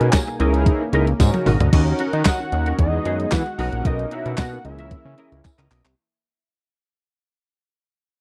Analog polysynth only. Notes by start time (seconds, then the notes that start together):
Already playing: C#4 D#4 F#4 A#4
0.39 D#4 E4 G#4 A#4
0.92 D#4 E4 G#4 A#4
1.19 C#4 D#4 F#4 A#4
1.72 C#4 D#4 F#4 A#4
2.39 C#4 D#4 F#4 A#4
2.52 C#4 D#4 F#4 A#4
2.78 B3 D#4 F#4 G#4
3.58 C#4 D#4 F#4 A#4
4.52 C#4 D#4 F#4 A#4
4.64 C#4 E4 G#4 A#4